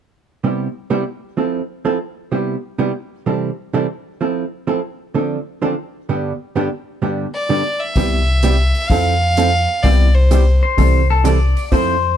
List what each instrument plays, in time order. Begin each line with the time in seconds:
0.44 hollow-body jazz guitar C3 G3 B3 E4 G4
0.90 hollow-body jazz guitar C3 G3 B3 E4 G4
1.37 hollow-body jazz guitar F3 C4 E4 A4
1.85 hollow-body jazz guitar F3 C4 E4 A4
2.32 hollow-body jazz guitar C3 G3 B3 E4 G4
2.79 hollow-body jazz guitar C3 G3 B3 E4 G4
3.26 hollow-body jazz guitar C3 E3 G3 C4 E4 A4
3.73 hollow-body jazz guitar C3 E3 G3 C4 E4 A4
4.21 hollow-body jazz guitar F3 C4 E4 A4
4.67 hollow-body jazz guitar F3 C4 E4 A4
5.14 hollow-body jazz guitar D3 F3 C4 D4 A4
5.62 hollow-body jazz guitar D3 F3 C4 D4 A4
6.09 hollow-body jazz guitar G2 D3 G3 B3 D4 G4
6.56 hollow-body jazz guitar G2 D3 G3 B3 D4 G4
7.02 hollow-body jazz guitar G2 D3 G3 B3 D4 G4
7.34 fiddle D5
7.49 hollow-body jazz guitar G2 D3 G3 B3 D4 G4
7.80 fiddle E5
7.96 upright bass C2, hollow-body jazz guitar C3 G3 B3 E4 G4, kick, open hi-hat
8.43 hollow-body jazz guitar C3 G3 B3 E4 G4, closed hi-hat
8.75 open hi-hat
8.88 upright bass F2, hollow-body jazz guitar F3 C4 E4 A4, fiddle F5, kick, open hi-hat
9.37 hollow-body jazz guitar F3 C4 E4 A4, closed hi-hat
9.83 upright bass C2, hollow-body jazz guitar C3 G3 B3 E4 G4, fiddle D5, kick, open hi-hat
10.15 fiddle C5
10.31 hollow-body jazz guitar C3 G3 B3 E4 G4, closed hi-hat
10.63 pedal steel guitar C5
10.77 upright bass C2, hollow-body jazz guitar C3 E3 G3 C4 E4 A4, kick, open hi-hat
11.10 pedal steel guitar A4
11.24 hollow-body jazz guitar C3 E3 G3 C4 E4 A4, pedal steel guitar D5, closed hi-hat
11.57 open hi-hat
11.72 upright bass F2, hollow-body jazz guitar F3 C4 E4 A4, pedal steel guitar C5, kick, open hi-hat